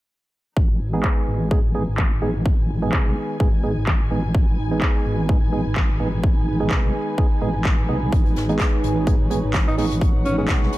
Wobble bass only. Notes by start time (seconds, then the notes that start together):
0.57 G#1
0.80 G#1
1.27 G#1
1.64 G#1
1.88 G#1
2.22 G#1
2.59 G#1
2.93 B1
3.40 G#1
3.77 G#1
4.11 G#1
4.34 G#1
4.58 G#1
5.05 G#1
5.42 G#1
5.66 G#1
6.00 G#1
6.37 G#1
6.71 B1
7.42 G#1
7.78 G#1
7.89 B1
8.12 G#1
8.36 G#1
8.83 G#1
9.20 G#1
9.44 G#1
9.78 G#1
10.15 G#1
10.49 B1